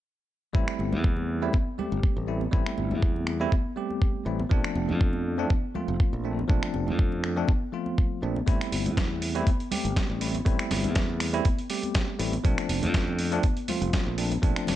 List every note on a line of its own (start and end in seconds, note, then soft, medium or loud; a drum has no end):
0.53 0.64 A1 medium
0.53 1.39 G3 medium
0.53 1.39 A3 medium
0.53 1.39 C4 medium
0.53 1.40 E4 loud
0.53 kick loud
0.68 finger snap medium
0.79 0.94 G1 medium
0.79 high conga medium
0.92 1.48 E2 medium
0.92 low conga medium
1.04 kick loud
1.16 high conga medium
1.42 1.55 G3 medium
1.42 1.55 A3 medium
1.42 1.56 C4 medium
1.42 1.56 E4 medium
1.53 kick loud
1.53 high conga medium
1.78 2.25 G3 medium
1.78 2.25 A3 medium
1.78 2.26 C4 medium
1.78 2.26 G4 medium
1.78 low conga medium
1.92 2.00 G1 medium
1.92 high conga medium
2.03 kick loud
2.17 2.47 A1 medium
2.27 2.43 G3 medium
2.27 2.43 A3 medium
2.27 2.43 C4 medium
2.27 2.43 E4 medium
2.41 high conga medium
2.52 2.62 A1 medium
2.52 3.37 G3 medium
2.52 3.37 A3 medium
2.52 3.38 C4 medium
2.52 3.38 E4 loud
2.52 kick loud
2.66 finger snap medium
2.78 2.92 G1 medium
2.78 high conga medium
2.91 3.46 E2 medium
2.91 low conga medium
3.02 kick loud
3.16 high conga medium
3.27 finger snap medium
3.40 3.53 G3 medium
3.40 3.54 A3 medium
3.40 3.54 C4 medium
3.40 3.54 E4 loud
3.52 kick loud
3.52 high conga medium
3.76 4.23 G3 medium
3.76 4.24 A3 medium
3.76 4.24 C4 medium
3.76 4.24 G4 medium
3.90 high conga medium
4.02 kick loud
4.26 4.44 A1 medium
4.26 4.41 G3 medium
4.26 4.41 A3 medium
4.26 4.41 C4 medium
4.26 4.41 E4 medium
4.40 high conga medium
4.49 4.60 A#1 medium
4.49 5.35 F3 medium
4.49 5.35 A3 medium
4.49 5.36 C4 medium
4.49 5.36 D4 loud
4.49 kick loud
4.64 finger snap medium
4.75 4.90 F1 medium
4.75 high conga medium
4.89 5.44 F2 medium
4.89 low conga medium
5.01 kick loud
5.13 high conga medium
5.38 5.52 F3 medium
5.38 5.52 A3 medium
5.38 5.52 C4 medium
5.38 5.52 D4 loud
5.50 kick loud
5.50 high conga medium
5.74 6.22 F3 medium
5.74 6.22 A3 medium
5.74 6.22 C4 medium
5.74 6.22 F4 medium
5.74 low conga medium
5.88 5.96 F1 medium
5.88 high conga medium
6.00 kick loud
6.13 6.43 A#1 medium
6.24 6.39 F3 medium
6.24 6.40 A3 medium
6.24 6.40 C4 medium
6.24 6.40 D4 medium
6.39 high conga medium
6.48 6.59 A#1 medium
6.48 7.33 F3 medium
6.48 7.34 A3 medium
6.48 7.34 C4 medium
6.48 7.34 D4 loud
6.48 kick loud
6.63 finger snap medium
6.74 6.89 F1 medium
6.74 high conga medium
6.88 7.43 F2 medium
6.88 low conga medium
6.99 kick loud
7.12 high conga medium
7.24 finger snap medium
7.36 7.50 F3 medium
7.36 7.50 A3 medium
7.36 7.50 C4 medium
7.36 7.50 D4 loud
7.48 kick loud
7.48 high conga medium
7.72 8.20 F3 medium
7.72 8.20 A3 medium
7.72 8.20 C4 medium
7.72 8.20 F4 medium
7.86 high conga medium
7.98 kick loud
8.22 8.40 A#1 medium
8.22 8.37 F3 medium
8.22 8.38 A3 medium
8.22 8.38 C4 medium
8.22 8.38 D4 medium
8.36 high conga medium
8.46 8.57 A1 medium
8.46 9.32 G3 medium
8.46 9.32 A3 medium
8.46 9.33 C4 medium
8.46 9.33 E4 loud
8.46 kick loud
8.46 closed hi-hat medium
8.61 finger snap medium
8.61 closed hi-hat soft
8.72 8.87 G1 medium
8.72 open hi-hat loud
8.72 high conga medium
8.86 9.41 E2 medium
8.86 closed hi-hat soft
8.86 low conga medium
8.97 kick loud
8.97 snare loud
8.97 closed hi-hat medium
9.11 high conga medium
9.22 open hi-hat loud
9.35 9.48 G3 medium
9.35 9.49 A3 medium
9.35 9.49 C4 medium
9.35 9.49 E4 loud
9.35 closed hi-hat soft
9.47 kick loud
9.47 closed hi-hat medium
9.47 high conga medium
9.60 closed hi-hat soft
9.71 10.18 G3 medium
9.71 10.18 A3 medium
9.71 10.19 C4 medium
9.71 10.19 G4 medium
9.71 open hi-hat loud
9.71 low conga medium
9.85 9.93 G1 medium
9.85 closed hi-hat soft
9.85 high conga medium
9.96 kick loud
9.96 snare loud
9.96 closed hi-hat medium
10.10 10.40 A1 medium
10.21 10.36 G3 medium
10.21 10.36 A3 medium
10.21 10.36 C4 medium
10.21 10.37 E4 medium
10.21 open hi-hat loud
10.34 closed hi-hat soft
10.34 high conga medium
10.45 10.55 A1 medium
10.45 11.30 G3 medium
10.45 11.31 A3 medium
10.45 11.31 C4 medium
10.45 11.31 E4 loud
10.45 kick loud
10.45 closed hi-hat medium
10.59 finger snap medium
10.59 closed hi-hat soft
10.71 10.86 G1 medium
10.71 snare medium
10.71 open hi-hat loud
10.71 high conga medium
10.84 11.39 E2 medium
10.84 closed hi-hat soft
10.84 low conga medium
10.95 kick loud
10.95 snare loud
10.95 closed hi-hat medium
11.10 high conga medium
11.20 finger snap medium
11.20 open hi-hat loud
11.33 11.47 G3 medium
11.33 11.47 A3 medium
11.33 11.47 C4 medium
11.33 11.47 E4 loud
11.33 closed hi-hat soft
11.45 kick loud
11.45 closed hi-hat medium
11.45 high conga medium
11.58 closed hi-hat soft
11.70 12.17 G3 medium
11.70 12.17 A3 medium
11.70 12.17 C4 medium
11.70 12.17 G4 medium
11.70 open hi-hat medium
11.83 closed hi-hat soft
11.83 high conga medium
11.95 kick loud
11.95 snare loud
11.95 closed hi-hat medium
12.19 12.37 A1 medium
12.19 12.34 G3 medium
12.19 12.34 A3 medium
12.19 12.35 C4 medium
12.19 12.35 E4 medium
12.19 open hi-hat loud
12.33 closed hi-hat soft
12.33 high conga medium
12.44 12.54 A#1 medium
12.44 13.29 F3 medium
12.44 13.29 A3 medium
12.44 13.29 C4 medium
12.44 13.30 D4 loud
12.44 kick loud
12.44 closed hi-hat medium
12.58 finger snap medium
12.58 closed hi-hat soft
12.69 12.84 F1 medium
12.69 open hi-hat medium
12.69 high conga medium
12.83 13.38 F2 medium
12.83 closed hi-hat medium
12.83 low conga medium
12.94 kick loud
12.94 snare loud
12.94 closed hi-hat medium
13.08 high conga medium
13.19 open hi-hat medium
13.32 13.45 F3 medium
13.32 13.45 A3 medium
13.32 13.46 C4 medium
13.32 13.46 D4 loud
13.32 closed hi-hat soft
13.43 kick loud
13.43 closed hi-hat medium
13.43 high conga medium
13.57 closed hi-hat soft
13.68 14.15 F3 medium
13.68 14.15 A3 medium
13.68 14.16 C4 medium
13.68 14.16 F4 medium
13.68 open hi-hat medium
13.68 low conga medium
13.82 13.89 F1 medium
13.82 closed hi-hat medium
13.82 high conga medium
13.93 kick loud
13.93 snare loud
13.93 closed hi-hat medium
14.07 14.37 A#1 medium
14.18 14.33 F3 medium
14.18 14.33 A3 medium
14.18 14.33 C4 medium
14.18 14.33 D4 medium
14.18 open hi-hat medium
14.32 closed hi-hat soft
14.32 high conga medium
14.42 14.52 A#1 medium
14.42 14.76 F3 medium
14.42 14.76 A3 medium
14.42 14.76 C4 medium
14.42 14.76 D4 loud
14.42 kick loud
14.42 closed hi-hat medium
14.56 finger snap medium
14.56 closed hi-hat soft
14.67 14.76 F1 medium
14.67 snare medium
14.67 open hi-hat medium
14.67 high conga medium